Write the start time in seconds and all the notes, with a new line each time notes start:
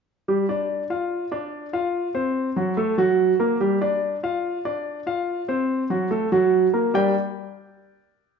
0.28 G3 G4
0.49 D4 D5
0.90 F4 F5
1.31 D4 D5
1.73 F4 F5
2.14 C4 C5
2.56 F#3 F#4
2.77 A3 A4
2.98 F#3 F#4
3.40 A#3 A#4
3.60 G3 G4
3.81 D4 D5
4.23 F4 F5
4.65 D4 D5
5.07 F4 F5
5.48 C4 C5
5.90 F#3 F#4
6.11 A3 A4
6.32 F#3 F#4
6.73 A#3 A#4
6.94 G3 D4 G4 A#4 D5 G5